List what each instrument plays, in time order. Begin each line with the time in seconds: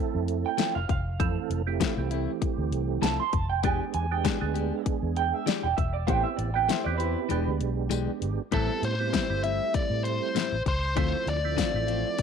Already playing: tonewheel organ A3 C4 E4 A4, clean electric guitar G5
0.15 fingered electric bass F2
0.28 closed hi-hat
0.46 clean electric guitar G5
0.58 clean electric guitar F3 A3 C4 E4, snare, closed hi-hat, tambourine
0.75 fingered electric bass F1, clean electric guitar F5
0.89 fingered electric bass F1, clean electric guitar F5, kick, closed hi-hat
1.20 fingered electric bass F2, tonewheel organ E3 A3 C4 A4, kick, closed hi-hat
1.50 fingered electric bass F1, closed hi-hat
1.67 tonewheel organ A3 C4 E4 G4
1.80 clean electric guitar F3 A3 C4 E4, kick, snare, closed hi-hat, tambourine
1.97 fingered electric bass C2, tonewheel organ E3 A3 C4 G4
2.11 clean electric guitar A3 C4 E4, closed hi-hat
2.42 kick, closed hi-hat
2.58 fingered electric bass D2
2.72 fingered electric bass C2, closed hi-hat
3.02 fingered electric bass C2, clean electric guitar F3 A3 C4 E4 A5, snare, closed hi-hat, tambourine
3.20 clean electric guitar C6, muted fingered electric bass stroke
3.33 fingered electric bass F1, clean electric guitar A5, kick, closed hi-hat
3.50 clean electric guitar G5
3.63 fingered electric bass E1, clean electric guitar E3 G#3 D4 G4 G#5, tonewheel organ G#3 B3 D4 G4, kick, closed hi-hat
3.94 fingered electric bass E2, clean electric guitar G#5, closed hi-hat
4.11 tonewheel organ G#3 B3 D4 G4, clean electric guitar G5
4.24 clean electric guitar E3 G#3 D4 G4 G#5, kick, snare, closed hi-hat, tambourine
4.41 fingered electric bass D2, tonewheel organ G#3 B3 D4 G#4
4.54 clean electric guitar G#3 D4 G4, closed hi-hat
4.86 kick, closed hi-hat
5.03 fingered electric bass E2
5.16 clean electric guitar G5, closed hi-hat
5.34 clean electric guitar E5
5.46 clean electric guitar E3 G#3 D4 G4 D5, snare, closed hi-hat, tambourine
5.63 fingered electric bass E1, clean electric guitar G5
5.77 fingered electric bass E1, clean electric guitar E5, kick, closed hi-hat
5.93 clean electric guitar D5
6.07 fingered electric bass A1, clean electric guitar A3 E4 G4 C5 G5, tonewheel organ B3 C4 E4 G4, kick, closed hi-hat
6.23 clean electric guitar E5
6.37 fingered electric bass A1, clean electric guitar D5, closed hi-hat
6.54 tonewheel organ B3 C4 E4 G4, clean electric guitar G5
6.67 clean electric guitar A3 E4 G4 C5 E5, snare, closed hi-hat, tambourine
6.84 fingered electric bass E2, tonewheel organ B3 C4 E4 G4, clean electric guitar D5
6.98 clean electric guitar E4 G4 B4 C5, closed hi-hat
7.29 fingered electric bass E1, clean electric guitar E3 G#3 D4 G4, tonewheel organ G#3 B3 D4 G4, closed hi-hat
7.47 fingered electric bass D2
7.61 fingered electric bass B1, closed hi-hat
7.90 fingered electric bass B1, clean electric guitar E3 G#3 D4 G4, closed hi-hat, tambourine
8.08 muted fingered electric bass stroke
8.22 fingered electric bass G#1, closed hi-hat
8.52 fingered electric bass A1, clean electric guitar A2 G3 C4 E4, tonewheel organ G3 B3 C4 E4, lead electric guitar A4, kick, closed hi-hat
8.82 fingered electric bass A2, lead electric guitar C5, closed hi-hat
8.99 tonewheel organ G3 B3 C4 E4
9.13 clean electric guitar A2 G3 C4 E4, kick, snare, closed hi-hat, tambourine
9.30 fingered electric bass G1, tonewheel organ G3 A3 C4 E4
9.43 clean electric guitar G3 C4 E4, lead electric guitar E5, closed hi-hat
9.74 lead electric guitar D5, kick, closed hi-hat
9.90 fingered electric bass A2
10.04 lead electric guitar C5, closed hi-hat
10.35 clean electric guitar A2 G3 C4 E4, snare, closed hi-hat, tambourine
10.52 fingered electric bass A1
10.66 fingered electric bass C#2, lead electric guitar C5, kick, closed hi-hat
10.96 fingered electric bass D2, clean electric guitar D3 A3 C4 F4, tonewheel organ F3 A3 C4 E4, lead electric guitar C5, kick, closed hi-hat
11.26 fingered electric bass D2, lead electric guitar D5, closed hi-hat
11.44 tonewheel organ F3 A3 C4 E4
11.57 clean electric guitar D3 A3 C4 F4, kick, snare, closed hi-hat, tambourine
11.74 fingered electric bass A1, tonewheel organ F3 A3 C4 E4
11.87 clean electric guitar A3 C4 F4, closed hi-hat
12.18 kick, closed hi-hat